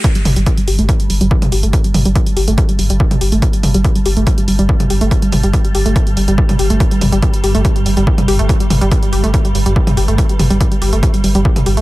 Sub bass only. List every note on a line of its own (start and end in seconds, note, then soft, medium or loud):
0.25 0.36 G1 loud
0.36 0.46 G1 medium
0.68 0.78 G1 medium
0.79 0.89 G1 medium
1.10 1.20 G1 loud
1.21 1.31 G1 medium
1.52 1.63 G1 loud
1.63 1.73 G1 medium
1.94 2.05 G1 loud
2.05 2.15 G1 medium
2.37 2.47 G1 loud
2.48 2.58 G1 medium
2.79 2.89 G1 loud
2.90 3.00 G1 medium
3.21 3.32 G1 medium
3.32 3.42 G1 medium
3.63 3.74 G1 medium
3.74 3.84 G1 medium
4.06 4.16 G1 loud
4.17 4.27 G1 medium
4.48 4.58 G1 loud
4.59 4.69 G1 medium
4.90 5.01 G1 loud
5.01 5.11 G1 medium
5.32 5.43 G1 medium
5.43 5.53 G1 medium
5.75 5.85 G1 loud
5.86 5.96 G1 medium
6.17 6.27 G1 loud
6.28 6.38 G1 medium
6.59 6.70 G1 loud
6.70 6.80 G1 medium
7.01 7.12 G1 loud
7.12 7.22 G1 medium
7.44 7.54 G1 loud
7.55 7.65 G1 medium
7.86 7.96 G1 loud
7.97 8.07 G1 medium
8.28 8.39 G1 medium
8.39 8.49 G1 medium
8.70 8.81 G1 medium
8.81 8.91 G1 medium
9.13 9.23 G1 loud
9.24 9.34 G1 medium
9.55 9.65 G1 loud
9.66 9.76 G1 medium
9.97 10.08 G1 loud
10.08 10.18 G1 medium
10.39 10.50 G1 loud
10.50 10.60 G1 medium
10.82 10.92 G1 loud
10.93 11.03 G1 medium
11.24 11.34 G1 loud
11.35 11.45 G1 medium
11.66 11.77 G1 loud
11.77 11.81 G1 medium